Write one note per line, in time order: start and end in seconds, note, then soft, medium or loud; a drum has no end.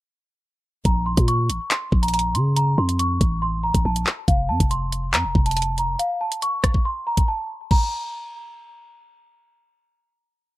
0.85 1.16 A#1 loud
0.85 1.05 A#5 medium
0.85 kick loud
0.85 closed hi-hat medium
1.06 1.25 C6 medium
1.17 1.51 A#2 loud
1.17 kick loud
1.17 closed hi-hat medium
1.28 1.68 C#6 medium
1.28 closed hi-hat medium
1.49 1.60 A1 loud
1.49 closed hi-hat medium
1.71 2.01 C6 medium
1.71 clap loud
1.71 closed hi-hat medium
1.92 2.37 A#1 loud
1.92 kick loud
2.03 2.12 A#5 medium
2.03 closed hi-hat medium
2.08 closed hi-hat medium
2.14 2.33 A#5 medium
2.14 closed hi-hat medium
2.19 closed hi-hat medium
2.35 2.76 C#3 loud
2.35 2.54 C6 medium
2.35 closed hi-hat medium
2.56 2.76 A#5 medium
2.56 closed hi-hat medium
2.78 3.19 F2 loud
2.78 2.97 C6 medium
2.89 closed hi-hat medium
2.99 3.40 C#6 medium
2.99 closed hi-hat medium
3.21 3.72 A1 loud
3.21 kick loud
3.21 closed hi-hat medium
3.42 3.61 C6 medium
3.63 3.83 A#5 medium
3.74 3.85 A1 loud
3.74 kick loud
3.74 closed hi-hat medium
3.85 4.06 A#1 loud
3.85 4.05 A5 medium
3.96 closed hi-hat medium
4.07 clap loud
4.28 4.51 F1 loud
4.28 4.47 F5 medium
4.28 kick loud
4.28 closed hi-hat medium
4.49 4.60 F2 loud
4.49 4.68 A5 medium
4.60 5.15 F1 loud
4.60 kick loud
4.60 closed hi-hat medium
4.71 5.11 C6 medium
4.71 closed hi-hat medium
4.92 closed hi-hat medium
5.13 5.26 F2 loud
5.13 5.44 A#5 medium
5.13 clap loud
5.13 closed hi-hat medium
5.24 5.35 F1 loud
5.35 5.97 F1 loud
5.35 kick loud
5.46 5.56 A5 medium
5.46 closed hi-hat medium
5.51 closed hi-hat medium
5.57 5.76 A5 medium
5.57 closed hi-hat medium
5.62 closed hi-hat medium
5.78 5.98 A#5 medium
5.78 closed hi-hat medium
5.99 6.19 F5 medium
5.99 closed hi-hat medium
6.21 6.40 A5 medium
6.32 closed hi-hat medium
6.42 6.83 C#6 medium
6.42 closed hi-hat medium
6.64 kick medium
6.64 cross-stick loud
6.64 closed hi-hat medium
6.74 kick medium
6.85 7.04 C6 medium
7.07 7.26 A#5 medium
7.17 kick loud
7.17 closed hi-hat medium
7.28 7.47 A5 medium
7.71 8.96 A#5 medium
7.71 kick loud
7.71 crash medium